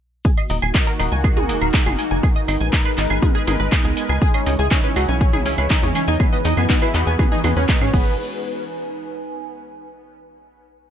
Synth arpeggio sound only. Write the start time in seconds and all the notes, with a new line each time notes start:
0.25 G#4 G#5
0.37 D#5 D#6
0.50 D#4 D#5
0.62 G#5 G#6
0.75 D#4 D#5
0.87 A#4 A#5
0.99 D#4 D#5
1.12 G#5 G#6
1.24 G#4 G#5
1.37 G#4 G#5
1.49 G#4 G#5
1.61 A#4 A#5
1.74 D#4 D#5
1.86 G#4 G#5
1.99 G#5 G#6
2.11 G#5 G#6
2.23 G#4 G#5
2.36 D#5 D#6
2.48 D#4 D#5
2.61 G#5 G#6
2.73 D#4 D#5
2.85 B4 B5
2.98 D#4 D#5
3.10 G#5 G#6
3.23 G#4 G#5
3.35 G#4 G#5
3.47 G#4 G#5
3.60 B4 B5
3.72 D#4 D#5
3.85 G#4 G#5
3.97 G#5 G#6
4.09 G#5 G#6
4.22 G#4 G#5
4.34 D#5 D#6
4.47 D#4 D#5
4.59 G#5 G#6
4.71 D#4 D#5
4.84 B4 B5
4.96 D#4 D#5
5.09 G#5 G#6
5.21 G#4 G#5
5.33 G#4 G#5
5.46 G#4 G#5
5.58 B4 B5
5.71 D#4 D#5
5.83 G#4 G#5
5.95 G#5 G#6
6.08 G#5 G#6
6.20 G#4 G#5
6.33 D#5 D#6
6.45 D#4 D#5
6.57 G#5 G#6
6.70 D#4 D#5
6.82 B4 B5
6.94 D#4 D#5
7.07 G#5 G#6
7.19 G#4 G#5
7.32 G#4 G#5
7.44 G#4 G#5
7.57 B4 B5
7.69 D#4 D#5
7.81 G#4 G#5
7.94 G#4